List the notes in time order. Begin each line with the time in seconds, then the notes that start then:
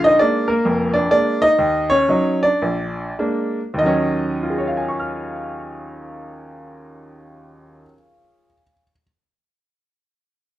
Already playing: A#1 D3
0.04 D#4 D#5
0.19 G#3 A#3 D4 D5
0.48 A#3 A#4
0.65 F1 F2
0.94 D4 D5
1.11 G#3 A#3 D4 D5
1.42 D#4 D#5
1.58 D#2
1.90 C#4 C#5
2.09 F#3 C#4 D#4
2.43 D4 D5
2.62 A#1
3.19 G#3 A#3 D4
3.74 D#2 D#3
3.79 F#3 D#5
3.86 C#4
4.43 F4
4.50 G#4
4.58 C#5
4.67 F5
4.77 G#5
4.88 C#6
4.99 F6